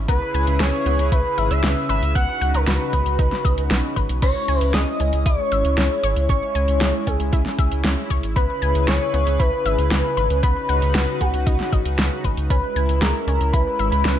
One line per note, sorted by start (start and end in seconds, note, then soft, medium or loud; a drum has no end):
0.08 0.20 C#2 loud
0.08 4.18 C#3 medium
0.08 0.17 B3 loud
0.08 2.13 C#4 medium
0.08 2.13 E4 medium
0.08 2.13 G#4 medium
0.08 4.18 B4 medium
0.08 0.62 B4 loud
0.08 0.57 B5 medium
0.08 kick loud
0.08 closed hi-hat medium
0.34 0.46 C#2 loud
0.34 0.49 G#5 medium
0.34 closed hi-hat medium
0.47 0.59 C#2 medium
0.47 closed hi-hat medium
0.60 0.72 C#2 loud
0.60 0.75 G#4 medium
0.60 1.14 C#5 loud
0.60 1.08 C#6 loud
0.60 snare loud
0.60 closed hi-hat loud
0.86 0.98 C#2 loud
0.86 1.01 B3 medium
0.86 closed hi-hat medium
0.99 1.11 C#2 medium
0.99 closed hi-hat medium
1.12 1.24 C#2 loud
1.12 1.21 E4 loud
1.12 1.52 B4 loud
1.12 1.48 B5 loud
1.12 kick loud
1.12 closed hi-hat medium
1.38 1.49 G#1 loud
1.38 1.46 E5 medium
1.38 closed hi-hat medium
1.51 1.62 C#2 medium
1.51 1.89 E5 loud
1.51 1.87 E6 loud
1.51 closed hi-hat medium
1.63 1.75 C#2 loud
1.63 1.78 B3 medium
1.63 snare loud
1.63 closed hi-hat medium
1.89 2.01 G#1 loud
1.89 2.04 B4 loud
1.89 2.14 E5 loud
1.89 2.14 E6 loud
1.89 closed hi-hat medium
2.03 2.14 C#2 medium
2.03 closed hi-hat medium
2.15 2.27 C#2 loud
2.15 2.24 B3 loud
2.15 10.39 C#4 medium
2.15 4.20 D#4 medium
2.15 4.20 F#4 medium
2.15 2.56 F#5 loud
2.15 2.51 F#6 loud
2.15 kick loud
2.15 closed hi-hat loud
2.41 2.53 C#2 loud
2.41 2.56 F#5 medium
2.41 closed hi-hat medium
2.54 2.66 C#2 medium
2.54 2.69 A#4 loud
2.54 2.66 A#5 medium
2.54 closed hi-hat medium
2.67 2.79 C#2 loud
2.67 2.82 F#4 medium
2.67 3.97 B4 medium
2.67 3.93 B5 medium
2.67 snare loud
2.67 closed hi-hat loud
2.93 3.05 C#2 loud
2.93 3.07 B3 medium
2.93 kick medium
2.93 closed hi-hat medium
3.06 3.18 C#2 medium
3.06 closed hi-hat medium
3.19 3.31 C#2 loud
3.19 3.28 D#4 loud
3.19 kick loud
3.19 closed hi-hat medium
3.32 snare soft
3.45 3.56 C#2 loud
3.45 3.53 D#5 medium
3.45 kick loud
3.45 closed hi-hat medium
3.58 3.69 C#2 medium
3.58 closed hi-hat medium
3.70 3.82 B1 loud
3.70 3.85 B3 medium
3.70 snare loud
3.70 closed hi-hat medium
3.96 4.08 G#1 medium
3.96 4.11 B4 loud
3.96 kick medium
3.96 closed hi-hat medium
4.09 4.21 B1 medium
4.09 closed hi-hat medium
4.22 4.34 C#2 loud
4.22 8.32 G#3 medium
4.22 4.31 C#4 loud
4.22 10.39 E4 medium
4.22 4.60 C#5 loud
4.22 4.71 C#6 loud
4.22 kick loud
4.22 closed hi-hat loud
4.22 crash medium
4.48 4.60 C#2 medium
4.48 4.63 G#5 medium
4.48 closed hi-hat medium
4.60 4.73 C#2 medium
4.60 4.76 B4 loud
4.60 closed hi-hat medium
4.74 4.86 C#2 loud
4.74 4.89 G#4 medium
4.74 5.28 D#5 loud
4.74 5.22 D#6 loud
4.74 snare loud
4.74 closed hi-hat loud
5.00 5.12 C#2 loud
5.00 5.15 C#4 medium
5.00 closed hi-hat medium
5.13 5.24 C#2 medium
5.13 closed hi-hat medium
5.26 5.37 C#2 loud
5.26 5.35 E4 loud
5.26 6.29 C#5 loud
5.26 6.25 C#6 loud
5.26 kick loud
5.26 closed hi-hat loud
5.52 5.63 G#1 loud
5.52 5.61 E5 medium
5.52 closed hi-hat medium
5.65 5.76 C#2 medium
5.65 closed hi-hat medium
5.78 5.89 C#2 loud
5.78 5.92 C#4 medium
5.78 snare loud
5.78 closed hi-hat loud
6.03 6.15 G#1 medium
6.03 6.18 C#5 loud
6.03 closed hi-hat medium
6.16 6.28 C#2 medium
6.16 closed hi-hat medium
6.29 6.41 G#1 loud
6.29 6.38 C#4 loud
6.29 7.09 C#5 loud
6.29 7.03 C#6 loud
6.29 kick loud
6.29 closed hi-hat loud
6.55 6.67 C#2 medium
6.55 6.70 G#5 medium
6.55 closed hi-hat medium
6.68 6.80 C#2 medium
6.68 closed hi-hat medium
6.81 6.93 C#2 loud
6.81 6.95 G#4 medium
6.81 snare loud
6.81 closed hi-hat loud
7.07 7.19 C#2 loud
7.07 7.21 C#4 medium
7.07 7.85 G#4 medium
7.07 7.81 G#5 medium
7.07 kick medium
7.07 closed hi-hat medium
7.20 7.31 C#2 medium
7.20 closed hi-hat medium
7.33 7.44 C#2 loud
7.33 7.41 E4 loud
7.33 kick loud
7.33 closed hi-hat medium
7.46 snare soft
7.59 7.70 C#2 loud
7.59 7.67 E5 medium
7.59 kick loud
7.59 closed hi-hat medium
7.72 7.83 C#2 medium
7.72 closed hi-hat medium
7.84 7.96 C#2 loud
7.84 7.99 C#4 medium
7.84 snare loud
7.84 closed hi-hat medium
8.10 8.22 C#2 loud
8.10 8.25 C#5 loud
8.10 kick medium
8.10 closed hi-hat medium
8.23 8.35 G#1 medium
8.23 closed hi-hat medium
8.36 8.48 C#2 loud
8.36 12.46 C#3 medium
8.36 8.45 B3 loud
8.36 10.41 G#4 medium
8.36 8.90 B4 loud
8.36 10.41 B4 medium
8.36 8.84 B5 loud
8.36 kick loud
8.36 closed hi-hat loud
8.62 8.74 C#2 medium
8.62 8.76 G#5 medium
8.62 closed hi-hat medium
8.75 8.87 C#2 medium
8.75 closed hi-hat medium
8.88 8.99 C#2 loud
8.88 9.02 G#4 medium
8.88 9.41 C#5 loud
8.88 9.36 C#6 loud
8.88 snare loud
8.88 closed hi-hat loud
9.14 9.25 C#2 loud
9.14 9.28 B3 medium
9.14 closed hi-hat medium
9.27 9.38 C#2 medium
9.27 closed hi-hat medium
9.39 9.51 C#2 loud
9.39 9.48 E4 loud
9.39 10.43 B4 loud
9.39 10.39 B5 loud
9.39 kick loud
9.39 closed hi-hat medium
9.65 9.77 G#1 loud
9.65 9.74 E5 medium
9.65 closed hi-hat medium
9.78 9.90 C#2 medium
9.78 closed hi-hat medium
9.91 10.03 C#2 loud
9.91 10.06 B3 medium
9.91 snare loud
9.91 closed hi-hat loud
10.17 10.29 G#1 loud
10.17 10.32 B4 loud
10.17 closed hi-hat medium
10.30 10.42 C#2 medium
10.30 closed hi-hat medium
10.43 10.55 C#2 loud
10.43 10.52 B3 loud
10.43 14.19 C#4 medium
10.43 12.48 D#4 medium
10.43 12.48 F#4 medium
10.43 12.48 B4 medium
10.43 11.23 B4 loud
10.43 11.17 B5 loud
10.43 kick loud
10.43 closed hi-hat medium
10.69 10.81 C#2 loud
10.69 10.83 F#5 medium
10.69 closed hi-hat medium
10.82 10.94 C#2 medium
10.82 closed hi-hat medium
10.95 11.06 C#2 loud
10.95 11.09 F#4 medium
10.95 snare loud
10.95 closed hi-hat medium
11.21 11.32 C#2 loud
11.21 11.35 B3 medium
11.21 11.99 F#4 medium
11.21 11.95 F#5 medium
11.21 kick medium
11.21 closed hi-hat medium
11.34 11.45 C#2 medium
11.34 closed hi-hat medium
11.47 11.58 C#2 loud
11.47 11.55 D#4 loud
11.47 kick loud
11.47 closed hi-hat medium
11.60 snare soft
11.72 11.84 G#1 loud
11.72 11.81 D#5 medium
11.72 kick loud
11.72 closed hi-hat medium
11.85 11.97 C#2 medium
11.85 closed hi-hat medium
11.98 12.10 C#2 loud
11.98 12.13 B3 medium
11.98 snare loud
11.98 closed hi-hat medium
12.24 12.36 G#1 loud
12.24 12.39 B4 loud
12.24 kick medium
12.24 closed hi-hat medium
12.37 12.49 C#2 medium
12.37 closed hi-hat medium
12.50 12.62 C#2 loud
12.50 14.19 G#3 medium
12.50 12.59 C#4 loud
12.50 14.19 E4 medium
12.50 13.03 B4 loud
12.50 12.98 B5 medium
12.50 kick loud
12.50 closed hi-hat medium
12.76 12.87 C#2 medium
12.76 12.90 G#5 medium
12.76 closed hi-hat medium
12.89 13.00 C#2 medium
12.89 closed hi-hat medium
13.01 13.13 C#2 loud
13.01 13.16 G#4 medium
13.01 13.55 A#4 medium
13.01 13.50 A#5 medium
13.01 snare loud
13.01 closed hi-hat medium
13.27 13.39 C#2 medium
13.27 13.42 C#4 medium
13.27 closed hi-hat medium
13.40 13.52 C#2 medium
13.40 closed hi-hat medium
13.53 13.65 C#2 loud
13.53 13.68 E4 loud
13.53 13.91 B4 loud
13.53 13.89 B5 loud
13.53 kick loud
13.53 closed hi-hat medium
13.79 13.91 G#1 loud
13.79 13.88 E5 medium
13.79 closed hi-hat medium
13.92 14.04 C#2 medium
13.92 14.19 B4 loud
13.92 14.19 B5 medium
13.92 closed hi-hat medium
14.05 14.17 C#2 loud
14.05 14.19 C#4 medium
14.05 snare loud
14.05 closed hi-hat medium